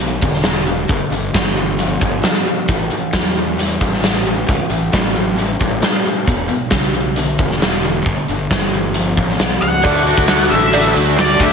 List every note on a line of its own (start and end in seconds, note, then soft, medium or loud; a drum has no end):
0.00 0.18 B1 medium
0.00 0.21 E2 medium
0.00 0.21 D3 medium
0.00 closed hi-hat medium
0.21 0.85 E1 medium
0.21 0.43 E2 medium
0.21 0.43 D3 medium
0.21 kick medium
0.21 closed hi-hat medium
0.33 snare soft
0.43 0.65 E2 medium
0.43 0.65 D3 medium
0.43 snare loud
0.43 closed hi-hat medium
0.66 0.87 E2 medium
0.66 0.88 D3 medium
0.66 closed hi-hat medium
0.88 1.00 G1 medium
0.88 1.10 G2 medium
0.88 1.10 D3 medium
0.88 kick loud
0.88 closed hi-hat medium
1.11 1.32 G1 medium
1.11 1.32 G2 medium
1.11 1.32 D3 medium
1.11 closed hi-hat medium
1.34 1.97 G1 medium
1.34 1.54 G2 medium
1.34 1.54 E3 medium
1.34 kick medium
1.34 snare loud
1.34 closed hi-hat medium
1.57 1.77 G2 medium
1.57 1.77 E3 medium
1.57 closed hi-hat medium
1.79 2.00 G2 medium
1.79 2.00 F3 medium
1.79 closed hi-hat medium
2.01 2.22 G1 medium
2.01 2.21 G2 medium
2.01 2.22 F3 medium
2.01 kick medium
2.01 closed hi-hat medium
2.23 2.44 G2 medium
2.23 2.44 F3 medium
2.23 snare loud
2.23 closed hi-hat medium
2.46 2.67 G2 medium
2.46 2.67 F3 medium
2.46 closed hi-hat medium
2.68 2.89 A1 medium
2.68 2.89 A2 medium
2.68 2.90 E3 medium
2.68 kick medium
2.68 closed hi-hat medium
2.91 3.11 A2 medium
2.91 3.11 E3 medium
2.91 closed hi-hat medium
3.13 3.77 E2 medium
3.13 3.34 A2 medium
3.13 3.34 F#3 medium
3.13 kick medium
3.13 snare loud
3.13 closed hi-hat medium
3.35 3.56 A2 medium
3.35 3.56 F#3 medium
3.35 closed hi-hat soft
3.58 3.78 A2 medium
3.58 3.79 G3 medium
3.58 closed hi-hat medium
3.80 4.44 A1 medium
3.80 4.01 A2 medium
3.80 4.01 G3 medium
3.80 kick medium
3.80 closed hi-hat medium
3.94 snare soft
4.02 4.23 A2 medium
4.02 4.23 G3 medium
4.02 snare loud
4.02 closed hi-hat medium
4.25 4.45 A2 medium
4.25 4.46 G3 medium
4.25 closed hi-hat medium
4.47 4.59 C#2 loud
4.47 4.68 A2 medium
4.47 4.68 E3 medium
4.47 kick medium
4.47 closed hi-hat medium
4.70 4.91 A1 medium
4.70 4.90 A2 medium
4.70 4.90 E3 medium
4.70 closed hi-hat medium
4.93 5.56 A1 medium
4.93 5.13 A2 medium
4.93 5.13 F#3 loud
4.93 kick medium
4.93 snare loud
4.93 closed hi-hat medium
5.15 5.35 A2 medium
5.15 5.35 F#3 medium
5.15 closed hi-hat medium
5.38 5.58 A2 medium
5.38 5.58 G3 medium
5.38 closed hi-hat medium
5.60 5.81 A1 medium
5.60 5.80 A2 medium
5.60 5.81 G3 medium
5.60 kick medium
5.60 closed hi-hat medium
5.81 6.02 A2 medium
5.81 6.02 G3 medium
5.81 snare loud
5.81 closed hi-hat medium
6.05 6.25 A2 medium
6.05 6.25 G3 medium
6.05 closed hi-hat medium
6.26 6.48 E1 medium
6.26 6.47 E2 medium
6.26 6.47 B2 medium
6.26 kick loud
6.26 closed hi-hat medium
6.48 6.69 E2 medium
6.48 6.69 B2 medium
6.48 closed hi-hat soft
6.70 7.35 B1 medium
6.70 6.92 E2 medium
6.70 6.92 C#3 medium
6.70 kick medium
6.70 snare loud
6.70 closed hi-hat medium
6.93 7.14 E2 medium
6.93 7.15 C#3 medium
6.93 closed hi-hat medium
7.16 7.37 E2 medium
7.16 7.37 D3 medium
7.16 closed hi-hat medium
7.39 8.02 E1 medium
7.39 7.59 E2 medium
7.39 7.59 D3 medium
7.39 kick medium
7.39 closed hi-hat medium
7.51 snare soft
7.61 7.81 E2 medium
7.61 7.82 D3 medium
7.61 snare medium
7.61 closed hi-hat medium
7.83 8.04 E2 medium
7.83 8.04 D3 medium
7.83 closed hi-hat medium
8.06 8.16 G1 medium
8.06 8.26 G2 medium
8.06 8.26 D3 medium
8.06 kick medium
8.06 closed hi-hat medium
8.28 8.49 G1 medium
8.28 8.49 G2 medium
8.28 8.50 D3 medium
8.28 closed hi-hat medium
8.50 9.14 G1 medium
8.50 8.71 G2 medium
8.50 8.72 E3 medium
8.50 kick medium
8.50 snare loud
8.50 closed hi-hat medium
8.73 8.93 G2 medium
8.73 8.94 E3 medium
8.73 closed hi-hat medium
8.94 9.16 G2 medium
8.94 9.16 F3 medium
8.94 closed hi-hat medium
9.17 9.38 A1 medium
9.17 9.38 G2 medium
9.17 9.38 F3 medium
9.17 kick medium
9.17 closed hi-hat medium
9.29 snare soft
9.39 9.60 B1 medium
9.39 9.60 G2 medium
9.39 9.61 F3 medium
9.39 snare loud
9.39 closed hi-hat medium
9.62 9.82 C#2 medium
9.62 9.82 G2 medium
9.62 9.82 F3 medium
9.62 10.50 F#5 loud
9.62 closed hi-hat medium
9.82 10.15 D2 medium
9.82 11.38 D3 medium
9.82 10.06 D3 medium
9.82 10.06 A3 medium
9.82 11.42 A3 medium
9.82 11.53 A3 medium
9.82 10.06 D4 medium
9.82 11.39 D4 loud
9.82 11.53 D4 medium
9.82 10.04 F#4 medium
9.82 10.21 F#4 loud
9.82 11.53 F#4 medium
9.82 11.38 F#4 loud
9.82 10.21 A4 medium
9.82 11.53 D5 medium
9.82 10.21 D5 loud
9.82 kick loud
9.82 closed hi-hat medium
9.82 cowbell medium
9.96 closed hi-hat soft
10.05 10.27 A3 soft
10.05 10.27 D4 soft
10.05 10.28 F#4 medium
10.05 10.51 F#4 medium
10.05 closed hi-hat medium
10.18 10.49 D2 medium
10.18 kick medium
10.27 10.51 D3 medium
10.27 10.51 A3 medium
10.27 10.94 A3 medium
10.27 10.50 D4 medium
10.27 10.64 F#4 medium
10.27 10.50 F#4 loud
10.27 10.64 A4 medium
10.27 10.64 D5 medium
10.27 snare loud
10.27 closed hi-hat loud
10.27 cowbell medium
10.50 10.92 A1 medium
10.50 10.72 A3 soft
10.50 10.74 D4 soft
10.50 10.73 F#4 soft
10.50 11.16 F#4 medium
10.50 10.92 E5 medium
10.50 closed hi-hat medium
10.72 10.95 D3 medium
10.72 10.95 A3 medium
10.72 11.37 D4 medium
10.72 10.95 D4 medium
10.72 10.93 F#4 medium
10.72 11.10 F#4 medium
10.72 11.10 A4 medium
10.72 11.10 D5 medium
10.72 closed hi-hat loud
10.72 cowbell medium
10.94 11.37 D2 medium
10.94 11.53 A3 medium
10.94 11.16 A3 soft
10.94 11.16 D4 soft
10.94 11.16 F#4 medium
10.94 closed hi-hat medium
11.07 closed hi-hat soft
11.16 11.39 D3 medium
11.16 11.40 A3 medium
11.16 11.40 D4 medium
11.16 11.53 F#4 medium
11.16 11.53 A4 medium
11.16 11.53 D5 medium
11.16 snare loud
11.16 closed hi-hat medium
11.16 cowbell medium
11.20 11.42 D5 medium
11.29 closed hi-hat soft
11.39 11.53 D2 medium
11.39 11.53 D3 medium
11.39 11.53 A3 medium
11.39 11.53 A3 soft
11.39 11.53 D4 medium
11.39 11.53 D4 soft
11.39 11.53 F#4 medium
11.39 11.53 E5 medium
11.39 kick medium
11.39 closed hi-hat medium